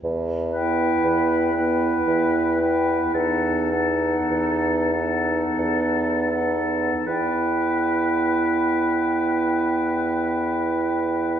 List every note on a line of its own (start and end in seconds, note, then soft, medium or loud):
0.04 0.92 E2 medium
0.52 1.53 B3 soft
0.52 1.54 E4 soft
0.52 1.54 B4 soft
0.52 1.54 G5 soft
1.04 1.95 E2 soft
1.54 2.57 B3 soft
1.54 2.59 E4 soft
1.54 2.59 B4 soft
1.54 2.57 G5 soft
2.07 3.02 E2 soft
2.60 3.13 B3 soft
2.60 3.14 E4 soft
2.60 3.13 B4 soft
2.60 3.14 G5 soft
3.14 4.16 E2 medium
3.14 3.70 B3 soft
3.14 3.71 D#4 soft
3.14 3.70 A4 soft
3.14 3.71 F#5 soft
3.71 4.91 B3 soft
3.71 4.91 D#4 soft
3.71 4.90 A4 soft
3.71 4.90 F#5 soft
4.30 5.43 E2 medium
4.92 6.30 B3 soft
4.92 6.31 D#4 soft
4.92 6.30 A4 soft
4.92 6.30 F#5 soft
5.59 6.90 E2 soft
6.31 7.06 B3 soft
6.31 7.06 D#4 soft
6.31 7.06 A4 soft
6.31 7.07 F#5 soft
7.07 11.40 E2 soft
7.07 11.40 B3 soft
7.07 11.40 E4 soft
7.07 11.40 B4 soft
7.07 11.40 G5 soft